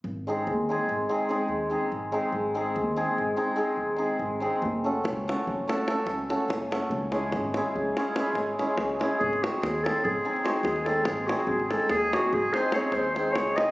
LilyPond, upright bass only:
\new Staff \with { instrumentName = "Upright bass" } { \clef bass \time 11/8 \tempo 4 = 144 gis,,4 dis,4 gis,,8 r4 dis,4 gis,,4 | gis,,4 dis,4 gis,,8 r4 dis,4 gis,,4 | fis,,4 cis,4 fis,,8 r4 cis,4 fis,,4 | cis,4 gis,,4 cis,8 r4 gis,,4 cis,4 |
gis,,4 dis,4 gis,,8 r4 dis,4 gis,,4 | gis,,4 dis,4 gis,,8 r4 dis,4 cis,4 | }